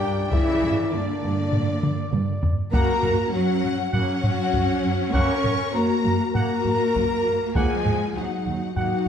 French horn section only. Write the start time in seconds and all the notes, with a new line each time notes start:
Already playing: G4
0.32 E4
0.93 D4
2.72 A#4
3.33 F#4
3.93 F#4
5.14 C#5
5.74 A#4
6.34 A#4
7.55 G#4
8.15 F#4
8.75 F#4